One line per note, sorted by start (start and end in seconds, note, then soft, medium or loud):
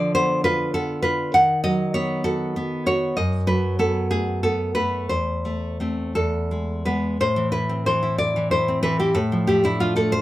0.00 1.30 D3 medium
0.00 0.75 F3 soft
0.00 0.14 D5 medium
0.15 0.73 B3 soft
0.15 0.43 C5 medium
0.44 1.03 F4 medium
0.44 0.73 B4 medium
0.74 1.34 B3 soft
0.74 1.02 A4 medium
1.02 1.34 F4 medium
1.02 1.32 B4 medium
1.34 3.12 D#3 medium
1.34 1.63 F#5 medium
1.64 2.54 F#3 soft
1.64 1.93 D#5 medium
1.94 2.55 B3 soft
1.94 2.23 C#5 medium
2.24 2.85 F#4 soft
2.24 2.83 A4 medium
2.56 3.17 B3 soft
2.86 3.17 F#4 soft
2.86 3.16 C#5 medium
3.17 5.07 F#2 medium
3.17 3.46 D#5 medium
3.47 4.43 F#3 soft
3.47 3.78 B4 medium
3.79 4.43 B3 soft
3.79 4.10 A4 medium
4.10 4.74 A3 soft
4.10 4.42 G#4 medium
4.43 5.11 B3 soft
4.43 4.74 A4 medium
4.75 5.10 A3 soft
4.75 5.09 B4 medium
5.09 6.13 E2 soft
5.09 6.12 C5 medium
5.45 5.79 A3 soft
5.80 6.13 A3 soft
5.80 6.13 C4 soft
6.15 7.17 E2 soft
6.15 6.83 A4 medium
6.51 6.85 G#3 soft
6.85 7.17 G#3 soft
6.85 7.17 B3 soft
6.85 7.18 B4 medium
7.20 9.11 A2 medium
7.20 7.51 C5 medium
7.36 7.86 E3 soft
7.52 8.01 E4 soft
7.52 7.84 B4 medium
7.69 8.67 C4 soft
7.86 8.35 E3 soft
7.86 8.17 C5 medium
8.03 8.51 E4 soft
8.18 8.49 D5 medium
8.36 8.82 E3 soft
8.51 8.99 E4 soft
8.51 8.82 C5 medium
8.68 9.16 C4 soft
8.83 9.15 E3 soft
8.83 8.99 B4 medium
9.00 9.14 E4 soft
9.00 9.15 G4 medium
9.15 10.22 A2 medium
9.15 9.46 A4 medium
9.32 9.80 F3 soft
9.47 9.95 A3 soft
9.47 9.64 G4 medium
9.64 10.22 D4 soft
9.64 9.80 E4 medium
9.80 10.22 F3 soft
9.80 9.96 F4 medium
9.96 10.22 A3 soft
9.96 10.12 A4 medium
10.12 10.22 C5 medium